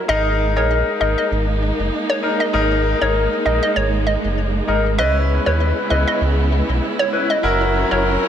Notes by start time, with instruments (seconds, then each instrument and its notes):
0.08 sub bass G#1, string section G#3 A#3 D#4, grand piano D#4 G#4 A#4, synth pluck D#5
0.56 sub bass A#1, grand piano D#4 G#4 A#4, synth pluck C#5
1.00 sub bass G#1, grand piano D#4 G#4 A#4, synth pluck D#5
1.18 synth pluck D#5
1.31 sub bass G#1
1.79 sub bass F#1
2.10 synth pluck C#5
2.23 grand piano D#4 G#4 A#4
2.40 synth pluck D#5
2.53 sub bass G#1, grand piano D#4 G#4 A#4
3.01 sub bass G#1, grand piano D#4 G#4 A#4, synth pluck C#5
3.45 sub bass A#1, grand piano D#4 G#4 A#4, synth pluck D#5
3.63 synth pluck D#5
3.76 sub bass G#1, synth pluck C#5
4.07 synth pluck D#5
4.24 sub bass F#1
4.68 sub bass G#1, grand piano D#4 G#4 A#4
4.98 sub bass C#2, string section C#3 B3 E4, grand piano C#4 E4 B4, synth pluck D#5
5.46 sub bass D#2, grand piano C#4 E4 B4, synth pluck C#5
5.90 sub bass C#2, grand piano C#4 E4 B4, synth pluck D#5
6.08 synth pluck D#5
6.21 sub bass C#2
6.69 sub bass B1
6.99 synth pluck C#5
7.13 grand piano C#4 E4 B4
7.30 synth pluck D#5
7.43 sub bass F#1, string section F#3 C#4 A#4, grand piano E4 F#4 A#4
7.91 sub bass F#1, grand piano E4 F#4 A#4, synth pluck C#5